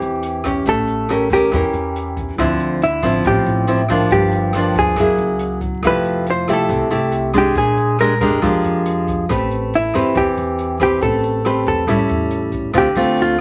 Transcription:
Already playing: E3 C4 G4 B4
0.02 E2, closed hi-hat
0.23 closed hi-hat
0.44 C#4 G4, kick, cross-stick, closed hi-hat
0.66 A1 A3 A4, kick, closed hi-hat
0.87 closed hi-hat
1.09 C#4 G4 A#4, cross-stick, closed hi-hat
1.30 E2 C#4 G4 A#4, kick, closed hi-hat
1.52 E2 E3 C#4 G4 A#4, kick, cross-stick, closed hi-hat
1.73 E2, closed hi-hat
1.96 closed hi-hat
2.17 kick, closed hi-hat
2.38 D2 D3 F3 C4 E4, kick, cross-stick, closed hi-hat
2.60 closed hi-hat
2.82 E4, closed hi-hat
3.02 A1 F3 C4 E4, cross-stick, closed hi-hat
3.24 A1 A2 G4, kick, closed hi-hat
3.46 A1, closed hi-hat
3.67 F3 C4 E4, closed hi-hat
3.88 F3 A#3 D4, kick, cross-stick, closed hi-hat
4.10 G1 G2 G4, kick, closed hi-hat
4.32 closed hi-hat
4.53 F3 A#3 D4, cross-stick, closed hi-hat
4.75 D2 G#4, kick, closed hi-hat
4.96 F#1 F#3 A#3 E4 G#4, kick, cross-stick, closed hi-hat
5.18 C#2, closed hi-hat
5.39 closed hi-hat
5.61 kick, closed hi-hat
5.82 F1 F3 A3 E4 G4, kick, cross-stick, closed hi-hat
5.87 B4
6.04 closed hi-hat
6.26 closed hi-hat
6.30 C5
6.48 C2 A3 E4 G4, cross-stick, closed hi-hat
6.53 A4
6.69 C2 C3, kick, closed hi-hat
6.90 C2 A3 E4 G4, closed hi-hat
7.12 closed hi-hat
7.34 G#3 D4, kick, cross-stick, closed hi-hat
7.38 G4
7.55 A#1 A#2 G#4, kick, closed hi-hat
7.77 closed hi-hat
7.99 G#3 D4 G4 A#4, cross-stick, closed hi-hat
8.20 F2 G#3 D4 G4 A#4, kick, closed hi-hat
8.42 F2 F3 G#3 D4 G4, kick, cross-stick, closed hi-hat
8.64 F2, closed hi-hat
8.86 closed hi-hat
9.07 kick, closed hi-hat
9.29 A1 A3 C4 G4 B4, kick, cross-stick, closed hi-hat
9.51 closed hi-hat
9.73 E4, closed hi-hat
9.94 E2 C4 G4 B4, cross-stick, closed hi-hat
10.15 E2 E3 G4, kick, closed hi-hat
10.37 E2, closed hi-hat
10.59 closed hi-hat
10.80 C4 G4 B4, kick, cross-stick, closed hi-hat
11.01 A1 A3 A4, kick, closed hi-hat
11.23 closed hi-hat
11.45 C4 G4 B4, cross-stick, closed hi-hat
11.66 E2 A4, kick, closed hi-hat
11.87 A1 A2 G3 C#4 E4, kick, cross-stick, closed hi-hat
12.09 E2, closed hi-hat
12.31 closed hi-hat
12.52 kick, closed hi-hat
12.73 D2 D3 A3 C4 F4, kick, cross-stick, closed hi-hat
12.78 G4
12.95 D2 A3 C4 F4, closed hi-hat
13.17 closed hi-hat
13.22 F4

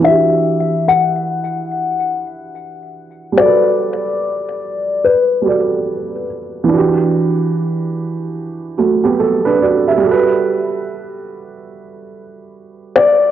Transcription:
Already playing: E3
0.02 D4 E5
0.06 F#4
0.11 G4
0.88 F#5
3.32 G3
3.37 F#4 D5
3.41 A4
3.46 B4
5.04 B4
5.42 G3 F#4
5.46 A4 D5
6.64 E3
6.68 D4
6.73 F#4
6.77 G4
8.78 A3 F#4
9.04 B3 G4
9.19 A4
9.45 D4 B4
9.62 F#4 D5
9.88 G4 E5
9.98 G3
10.02 F#4
10.06 A4
10.11 B4
12.96 D5

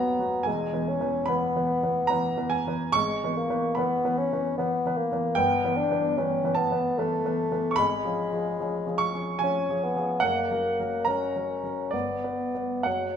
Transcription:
Already playing: D#2 F#3 B3 F#4 F#5 A#5
0.19 F#3 B3 F#4
0.43 E1 E2 G#3 G#5
0.73 E3 B3 B4
0.89 C#4
1.00 E3 B3 B4
1.26 E3 B3 B4 B5
1.56 E3 B3 B4
1.83 E3 B3 B4
2.07 E3 B3 B4 A#5
2.37 E3 B3 B4
2.50 G#5
2.67 E3 B3 B4
2.92 G#1 G#3 C#6
3.23 E3 B3 B4
3.37 A#3
3.50 E3 B3 B4
3.75 E3 B3 B4 B5
4.05 E3 B3 B4
4.19 C#4
4.32 E3 B3 B4
4.58 E3 B3 B4
4.86 E3 B3 B4
4.97 A#3
5.12 E3 B3 B4
5.35 G1 B3 G5
5.64 E3 B3 B4
5.77 D4
5.90 E3 B3 B4
6.17 E3 B3 C#4 B4
6.44 E3 B3 B4
6.55 B3 A5
6.71 E3 B3 B4
6.98 E3 A3 B3 B4
7.25 E3 B3 B4
7.51 E3 B3 B4
7.71 C#6
7.76 G#1 G#3 B5
8.04 F3 C#4 G#4
8.32 F3 C#4 G#4
8.60 F3 C#4 G#4
8.87 F3 C#4 G#4
8.98 C#6
9.14 F3 C#4 G#4
9.39 F3 C#4 G#4 G#5
9.43 C#4
9.69 F3 C#4 G#4
9.84 B3
9.96 F3 C#4 G#4
10.20 F#1 F#5
10.24 A#3
10.51 F#3 C#4 A#4
10.79 F#3 C#4 A#4
11.05 F#3 C#4 A#4 A#5
11.09 C#4
11.36 F#3 C#4 A#4
11.63 F#3 C#4 A#4
11.91 G1 B3 D5
12.24 B3 B4
12.55 B3 B4
12.83 F#1 F#3 F#5

